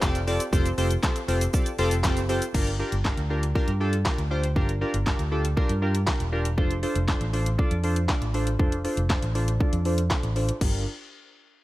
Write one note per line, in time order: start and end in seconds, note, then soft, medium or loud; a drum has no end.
0.02 0.37 F1 medium
0.02 0.17 C4 loud
0.02 0.17 F4 loud
0.02 0.17 G4 loud
0.02 0.17 A4 loud
0.02 0.17 D5 loud
0.02 kick loud
0.02 snare loud
0.02 clap loud
0.02 shaker medium
0.15 closed hi-hat medium
0.15 shaker medium
0.27 0.42 C4 medium
0.27 0.42 F4 medium
0.27 0.42 G4 medium
0.27 0.43 A4 medium
0.27 0.43 D5 loud
0.27 open hi-hat medium
0.27 shaker medium
0.40 closed hi-hat medium
0.40 shaker medium
0.52 0.70 F1 loud
0.52 0.68 C4 loud
0.52 0.68 F4 loud
0.52 0.68 G4 loud
0.52 0.68 A4 loud
0.52 0.68 C5 loud
0.52 kick loud
0.52 shaker medium
0.66 closed hi-hat medium
0.66 shaker medium
0.78 0.95 F1 loud
0.78 0.93 C4 medium
0.78 0.93 F4 medium
0.78 0.93 G4 medium
0.78 0.93 A4 medium
0.78 0.93 C5 loud
0.78 open hi-hat medium
0.78 shaker medium
0.91 closed hi-hat medium
0.91 shaker medium
1.03 1.18 C4 medium
1.03 1.18 F4 medium
1.03 1.18 G4 medium
1.03 1.18 A4 medium
1.03 1.18 C5 medium
1.03 kick loud
1.03 snare medium
1.03 clap loud
1.03 shaker medium
1.16 closed hi-hat medium
1.16 shaker medium
1.28 1.46 F1 medium
1.28 1.43 C4 medium
1.28 1.43 F4 medium
1.28 1.43 G4 medium
1.28 1.43 A4 medium
1.28 1.44 C5 loud
1.28 open hi-hat medium
1.28 shaker medium
1.41 closed hi-hat medium
1.41 shaker medium
1.53 1.68 C4 medium
1.53 1.69 F4 medium
1.53 1.69 G4 medium
1.53 1.69 A4 medium
1.53 1.69 D5 loud
1.53 kick loud
1.53 shaker medium
1.66 closed hi-hat medium
1.66 shaker medium
1.79 2.04 F1 medium
1.79 1.94 C4 loud
1.79 1.94 F4 loud
1.79 1.94 G4 loud
1.79 1.94 A4 loud
1.79 1.94 C5 loud
1.79 open hi-hat medium
1.79 shaker medium
1.91 closed hi-hat medium
1.91 shaker medium
2.03 2.39 F#1 medium
2.03 2.19 C4 loud
2.03 2.19 F4 loud
2.03 2.19 G4 loud
2.03 2.19 A4 loud
2.03 2.19 C5 loud
2.03 kick loud
2.03 snare loud
2.03 clap loud
2.03 shaker medium
2.17 closed hi-hat medium
2.17 shaker medium
2.29 2.44 C4 medium
2.29 2.44 F4 medium
2.29 2.44 G4 medium
2.29 2.44 A4 medium
2.29 2.44 C5 loud
2.29 open hi-hat medium
2.29 shaker soft
2.42 closed hi-hat medium
2.42 shaker medium
2.54 2.81 G1 loud
2.54 2.69 D4 loud
2.54 2.69 F4 medium
2.54 2.69 G4 medium
2.54 2.70 A#4 loud
2.54 kick loud
2.54 crash medium
2.67 closed hi-hat medium
2.79 2.95 D4 medium
2.79 2.95 F4 medium
2.79 2.95 G4 medium
2.79 2.95 A#4 medium
2.92 3.10 G1 medium
2.92 closed hi-hat medium
3.05 3.20 D4 medium
3.05 3.20 F4 medium
3.05 3.20 G4 medium
3.05 3.20 A#4 medium
3.05 kick loud
3.05 snare medium
3.05 clap loud
3.17 3.53 D2 loud
3.17 closed hi-hat medium
3.30 3.45 D4 medium
3.30 3.45 F4 medium
3.30 3.45 G4 medium
3.30 3.45 A#4 medium
3.43 closed hi-hat medium
3.55 3.70 D4 loud
3.55 3.70 F4 loud
3.55 3.70 G4 loud
3.55 3.70 A#4 loud
3.55 kick loud
3.68 4.03 G2 medium
3.68 closed hi-hat medium
3.80 3.95 D4 medium
3.80 3.96 F4 medium
3.80 3.96 G4 medium
3.80 3.96 A4 medium
3.93 closed hi-hat medium
4.05 4.21 D4 medium
4.05 4.21 F4 medium
4.05 4.21 G4 medium
4.05 4.21 A#4 medium
4.05 kick loud
4.05 snare loud
4.05 clap loud
4.18 4.58 D2 medium
4.18 closed hi-hat medium
4.31 4.46 D4 medium
4.31 4.46 F4 medium
4.31 4.46 G4 medium
4.31 4.46 C5 loud
4.44 closed hi-hat medium
4.56 4.82 G1 loud
4.56 4.71 D4 loud
4.56 4.71 F4 medium
4.56 4.71 G4 loud
4.56 4.71 A#4 loud
4.56 kick loud
4.69 closed hi-hat medium
4.81 4.96 D4 medium
4.81 4.96 F4 medium
4.81 4.96 G4 medium
4.81 4.96 A#4 medium
4.94 5.11 G1 medium
4.94 closed hi-hat medium
5.06 5.21 D4 medium
5.06 5.22 F4 medium
5.06 5.22 G4 medium
5.06 5.22 A#4 medium
5.06 kick loud
5.06 snare medium
5.06 clap loud
5.19 5.54 D2 loud
5.19 closed hi-hat medium
5.31 5.47 D4 medium
5.31 5.47 F4 medium
5.31 5.47 G4 medium
5.31 5.47 A4 loud
5.45 closed hi-hat medium
5.57 5.72 D4 loud
5.57 5.72 F4 loud
5.57 5.72 G4 loud
5.57 5.72 A#4 loud
5.57 kick loud
5.69 6.05 G2 medium
5.69 closed hi-hat medium
5.82 5.97 D4 medium
5.82 5.97 F4 medium
5.82 5.97 G4 medium
5.82 5.97 A#4 medium
5.95 closed hi-hat medium
6.07 6.22 D4 medium
6.07 6.22 F4 medium
6.07 6.22 G4 medium
6.07 6.23 A#4 medium
6.07 kick loud
6.07 snare loud
6.07 clap loud
6.20 6.58 E1 medium
6.20 closed hi-hat medium
6.32 6.47 D4 medium
6.32 6.48 F4 medium
6.32 6.48 G4 medium
6.32 6.48 A#4 loud
6.45 closed hi-hat medium
6.58 6.84 F1 loud
6.58 6.73 D4 loud
6.58 6.73 F4 loud
6.58 6.73 A4 medium
6.58 6.73 C5 loud
6.58 kick loud
6.71 closed hi-hat medium
6.83 6.98 D4 medium
6.83 6.98 F4 medium
6.83 6.98 A4 medium
6.83 6.98 C5 medium
6.83 open hi-hat medium
6.96 7.13 F1 loud
6.96 closed hi-hat medium
7.08 7.23 D4 medium
7.08 7.23 F4 medium
7.08 7.23 A4 medium
7.08 7.23 C5 loud
7.08 kick loud
7.08 snare medium
7.08 clap loud
7.21 7.56 A1 loud
7.21 closed hi-hat medium
7.33 7.48 D4 medium
7.33 7.48 F4 medium
7.33 7.48 A4 medium
7.33 7.49 C5 medium
7.33 open hi-hat medium
7.46 closed hi-hat medium
7.58 7.74 D4 loud
7.58 7.74 F4 loud
7.58 7.74 A4 loud
7.58 7.74 D5 loud
7.58 kick loud
7.71 8.06 F2 medium
7.71 closed hi-hat medium
7.84 7.99 D4 medium
7.84 7.99 F4 medium
7.84 7.99 A4 medium
7.84 7.99 C5 medium
7.84 open hi-hat medium
7.96 closed hi-hat medium
8.09 8.24 D4 medium
8.09 8.24 F4 medium
8.09 8.24 A4 medium
8.09 8.24 D5 medium
8.09 kick loud
8.09 snare loud
8.09 clap loud
8.22 8.59 A1 medium
8.22 closed hi-hat medium
8.34 8.49 D4 medium
8.34 8.49 F4 medium
8.34 8.49 A4 medium
8.34 8.49 C5 medium
8.34 open hi-hat medium
8.47 closed hi-hat medium
8.59 8.86 F1 loud
8.59 8.74 D4 loud
8.59 8.74 F4 loud
8.59 8.75 A4 loud
8.59 8.75 C5 loud
8.59 kick loud
8.72 closed hi-hat medium
8.84 9.00 D4 medium
8.84 9.00 F4 medium
8.84 9.00 A4 medium
8.84 9.00 C5 loud
8.84 open hi-hat medium
8.97 9.15 F1 loud
8.97 closed hi-hat medium
9.10 9.25 D4 medium
9.10 9.25 F4 medium
9.10 9.25 A4 medium
9.10 9.25 C5 loud
9.10 kick loud
9.10 snare medium
9.10 clap loud
9.22 9.58 A1 loud
9.22 closed hi-hat medium
9.35 9.50 D4 medium
9.35 9.50 F4 medium
9.35 9.50 A4 medium
9.35 9.50 C5 loud
9.35 open hi-hat medium
9.48 closed hi-hat medium
9.60 9.75 D4 loud
9.60 9.75 F4 loud
9.60 9.75 A4 loud
9.60 9.75 D5 loud
9.60 kick loud
9.73 10.08 F2 medium
9.73 closed hi-hat medium
9.85 10.00 D4 medium
9.85 10.01 F4 medium
9.85 10.01 A4 medium
9.85 10.01 C5 medium
9.85 open hi-hat medium
9.98 closed hi-hat medium
10.10 10.26 D4 medium
10.10 10.26 F4 medium
10.10 10.26 A4 medium
10.10 10.26 C5 medium
10.10 kick loud
10.10 snare medium
10.10 clap loud
10.23 10.50 A1 medium
10.23 closed hi-hat medium
10.36 10.51 D4 medium
10.36 10.51 F4 medium
10.36 10.51 A4 medium
10.36 10.51 C5 loud
10.36 open hi-hat medium
10.49 closed hi-hat medium
10.61 10.85 G1 loud
10.61 10.85 D4 medium
10.61 10.85 F4 medium
10.61 10.85 G4 medium
10.61 10.85 A#4 medium
10.61 kick loud
10.61 crash medium